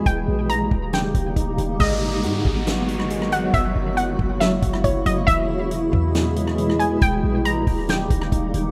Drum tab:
CC |----------------|x---------------|----------------|----------------|
HH |x---x---x-x-x-x-|----x---x-x-x-x-|x---x---x-x-x-x-|x---x---x-x-x-x-|
SD |--------o-------|--------o--r-r--|--------o--r----|--------o--r-r--|
BD |o-----o---o-o---|o-----o---------|o-----o---o-o---|o-----o---------|

CC |----------------|
HH |x---x-o-x-x-x-x-|
SD |--------o--r----|
BD |o-----o---o-o---|